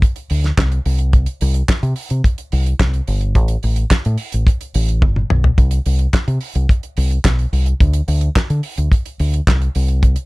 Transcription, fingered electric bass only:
0.31 0.50 D2 medium
0.58 0.78 C2 medium
0.86 1.25 C2 loud
1.42 1.61 C2 loud
1.83 1.93 C3 loud
2.11 2.21 C3 medium
2.53 2.72 C2 loud
2.80 3.00 C2 medium
3.08 3.35 G1 medium
3.35 3.55 A1 loud
3.64 3.83 A1 loud
3.91 muted fingered electric bass stroke medium
4.06 4.15 A2 loud
4.34 4.44 A1 medium
4.75 5.02 A1 loud
5.02 5.22 G1 loud
5.30 5.50 B1 medium
5.58 5.78 C2 loud
5.86 6.06 C2 loud
6.14 muted fingered electric bass stroke soft
6.28 6.37 C3 loud
6.55 6.65 C2 loud
6.97 7.17 C2 loud
7.25 7.45 B1 medium
7.53 7.72 C2 loud
7.81 8.00 D2 loud
8.08 8.28 D2 loud
8.50 8.60 D3 loud
8.78 8.88 D2 medium
9.20 9.39 D2 loud
9.47 9.67 C2 medium
9.75 10.15 C2 loud

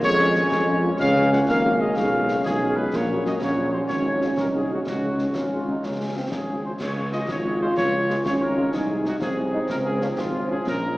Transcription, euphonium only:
0.04 0.96 G#3 medium
1.01 1.45 C#4 medium
1.48 1.98 A#3 medium
1.96 2.93 G#3 medium
2.94 3.43 A#3 medium
3.41 4.86 C#4 medium
4.86 6.52 C#4 medium
7.30 8.22 F4 medium
8.26 8.70 C#4 medium
8.73 9.23 D#4 medium
9.21 10.66 C4 medium
10.66 10.98 C#4 medium

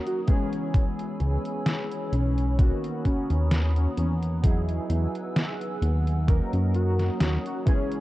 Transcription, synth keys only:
0.00 0.19 F#3 medium
0.00 0.19 A#3 medium
0.00 0.20 C#4 medium
0.00 0.20 D#4 medium
0.00 0.21 A#4 medium
0.27 2.50 E3 medium
0.27 2.50 G#3 medium
0.27 2.51 B3 medium
0.27 2.51 C#4 medium
0.27 2.51 G#4 loud
2.58 4.34 D#3 medium
2.58 4.35 A#3 medium
2.58 4.35 B3 medium
2.58 4.36 C#4 medium
2.58 4.36 F#4 medium
4.42 6.19 F#3 medium
4.42 6.19 B3 medium
4.42 6.20 D#4 medium
4.42 6.20 E4 medium
4.42 6.20 G#4 medium
6.27 7.58 F#3 medium
6.27 7.58 A#3 medium
6.27 7.58 C#4 medium
6.27 7.59 D#4 medium
6.27 7.59 A#4 medium
7.65 8.00 E3 medium
7.65 8.00 G#3 medium
7.65 8.00 B3 medium
7.65 8.00 C#4 medium
7.65 8.00 G#4 loud

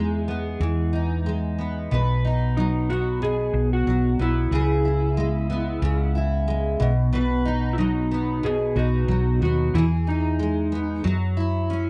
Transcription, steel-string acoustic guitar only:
0.00 0.59 E3 medium
0.00 1.25 G#3 medium
0.00 0.27 B3 soft
0.00 0.92 D#4 soft
0.00 1.92 G#4 medium
0.28 1.58 B3 soft
0.61 1.98 E3 medium
0.93 2.24 D#4 soft
1.26 1.98 G#3 soft
1.59 2.90 B3 soft
1.91 3.21 B2 medium
1.91 4.52 B4 medium
2.25 3.55 D#4 soft
2.57 3.86 F#3 medium
2.90 4.19 B3 medium
3.22 4.59 B2 medium
3.87 4.59 F#3 medium
4.19 5.49 B3 medium
4.52 5.81 C#3 medium
4.52 6.88 G#4 medium
4.85 6.14 E4 medium
5.17 6.46 G#3 medium
5.50 8.11 B3 medium
5.82 6.88 C#3 medium
6.15 6.88 E4 soft
6.48 6.88 G#3 medium
6.80 7.11 B2 medium
7.13 8.42 B2 medium
7.13 9.74 B4 medium
7.45 8.76 D#4 soft
7.78 9.07 F#3 medium
8.11 9.41 B3 medium
8.43 9.81 B2 medium
8.76 9.81 D#4 soft
9.08 9.81 F#3 medium
9.42 9.82 B3 soft
9.75 11.12 E3 medium
9.75 11.13 G#4 medium
10.07 11.12 D#4 medium
10.39 11.04 G#3 medium
10.72 11.12 B3 medium
11.04 11.90 F#3 medium
11.37 11.90 E4 medium
11.70 11.90 C#4 medium

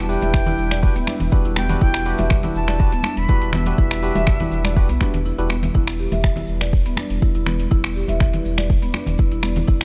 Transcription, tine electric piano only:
0.09 0.44 D4 medium
0.09 0.44 E4 medium
0.09 0.44 G4 medium
0.09 0.44 B4 loud
0.46 0.80 D4 medium
0.46 0.80 E4 medium
0.46 0.80 G4 medium
0.46 0.80 B4 medium
0.83 0.94 D4 medium
0.83 0.94 F#4 medium
0.83 0.94 G4 medium
0.83 0.94 B4 loud
1.32 1.67 D4 medium
1.32 1.66 F#4 medium
1.32 1.67 G4 medium
1.32 1.66 B4 loud
1.70 2.03 D4 medium
1.70 2.03 F#4 medium
1.70 2.03 G4 medium
1.70 2.03 B4 loud
2.06 2.40 D4 medium
2.06 2.40 F#4 medium
2.06 2.40 G4 medium
2.06 2.40 B4 loud
2.44 2.77 D4 medium
2.44 2.77 F#4 medium
2.44 2.77 G4 medium
2.44 2.77 B4 medium
2.80 2.91 D4 loud
2.80 2.91 F#4 medium
2.80 2.91 G4 medium
2.80 2.91 B4 loud
3.29 3.63 D4 medium
3.29 3.63 F#4 medium
3.29 3.63 G4 medium
3.29 3.63 B4 loud
3.67 4.00 D4 medium
3.67 4.00 F#4 medium
3.67 4.00 G4 medium
3.67 4.00 B4 medium
4.03 4.37 D4 medium
4.03 4.37 F#4 medium
4.03 4.37 G4 medium
4.03 4.37 B4 loud
4.40 4.74 D4 medium
4.40 4.74 F#4 medium
4.40 4.74 G4 medium
4.40 4.74 B4 medium
4.76 4.87 D4 medium
4.76 4.87 F#4 medium
4.76 4.87 G4 medium
4.76 4.87 B4 loud
5.01 5.18 D4 medium
5.01 5.18 F#4 medium
5.01 5.18 G4 medium
5.01 5.18 B4 medium
5.38 5.55 D4 medium
5.38 5.55 F#4 medium
5.38 5.55 G4 medium
5.38 5.55 B4 loud

